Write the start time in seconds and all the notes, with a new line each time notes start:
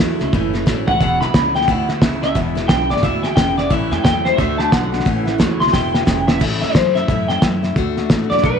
Already playing: E3
0.00 E2 A2 F#3 A3 C#4 E4
0.19 C#2 A2 F#3 A3 C#4 E4, snare
0.33 F#1 A2 E3 A3 C#4 E4, kick, snare
0.53 A2 E3 A3 C#4 E4, snare
0.66 A1 A2 E3 F#3 A3 C#4 E4, kick, snare, hi-hat pedal
0.87 A2 F#3 A3 C#4 E4 F#5, floor tom
1.00 E1 E2 B2 E3 G#3 B3 E4 F#5, kick, snare
1.21 B1 E2 B2 E3 G#3 B3 E4 B5, snare
1.34 C#2 E2 C#3 E3 G#3 B3 E4, kick, snare, hi-hat pedal
1.54 E2 C#3 E3 G#3 B3 E4 G5, snare
1.61 snare
1.68 D2 E2 B2 E3 G#3 B3 E4 F#5, kick, snare
1.87 E2 B2 E3 G#3 B3 E4 E5, snare
2.01 C#2 E2 C#3 E3 G#3 B3 E4, kick, snare, hi-hat pedal
2.22 E2 C#3 E3 G#3 B3 E4 E5, snare
2.35 E1 E2 B2 E3 G#3 B3 E4, kick, snare
2.55 E2 B2 E3 G#3 B3 E4, snare
2.68 B1 E2 C#3 E3 G#3 B3 E4 G5, kick, snare, hi-hat pedal
2.89 G#1 E2 C#3 E3 G#3 B3 E4 D5, snare
2.97 snare
3.02 D2 E2 B2 E3 G#3 B3 E4 E5, kick, snare
3.23 E2 B2 E3 G#3 B3 E4 G5, snare
3.36 E1 E2 C#3 E3 G#3 B3 E4 G5, kick, snare, hi-hat pedal
3.57 E2 C#3 E3 G#3 B3 E4 D5, snare
3.70 A1 A2 E3 A3 C#4 E4 E5, kick, snare
3.91 E2 A2 E3 A3 C#4 E4 G5, snare
4.04 E2 A2 E3 F#3 A3 C#4 E4 G5, kick, snare, hi-hat pedal
4.25 A2 F#3 A3 C#4 E4 C5, snare
4.37 D2 D3 A3 D4 F#4 E5, kick, snare
4.58 D3 A3 D4 F#4 A5, snare
4.72 B1 D3 A3 B3 D4 F#4 F#5, kick, snare, hi-hat pedal
4.92 D3 A3 B3 D4 F#4, snare
5.00 snare
5.05 A1 A2 E3 A3 C#4 E4, kick, snare
5.25 A2 E3 A3 C#4 E4, snare
5.38 E2 A2 E3 F#3 A3 C#4 E4, kick, snare, hi-hat pedal
5.60 C#2 A2 F#3 A3 C#4 E4 C6, snare
5.67 snare
5.73 E1 E2 B2 E3 G#3 B3 E4 G5, kick, snare
5.94 E2 B2 E3 G#3 B3 E4, snare
6.06 E1 E2 C#3 E3 G#3 B3 E4, kick, snare, hi-hat pedal
6.27 E2 C#3 E3 G#3 B3 E4 E5, snare
6.40 A1 A2 E3 A3 C#4 E4, kick, snare, crash
6.61 E2 A3 C#4 E4 E5, snare
6.74 F#2 E3 A3 C#4 E4 C5, kick, snare, hi-hat pedal
6.95 A3 C#4 E4 E5, snare
7.08 F#2 A2 E3 A3 C#4 E4, kick, snare
7.28 A3 C#4 E4 G5, snare
7.42 F#2 E3 A3 C#4 E4 E5, kick, snare, hi-hat pedal
7.63 A3 C#4 E4, snare
7.76 D2 D3 A3 D4 F#4, kick, snare
7.97 A3 D4 F#4, snare
8.09 A2 D3 A3 D4 F#4, kick, snare, hi-hat pedal
8.30 F#2 A3 D4 F#4 D5, snare
8.38 snare
8.43 B1 D3 A3 D4 F#4 B4, kick, snare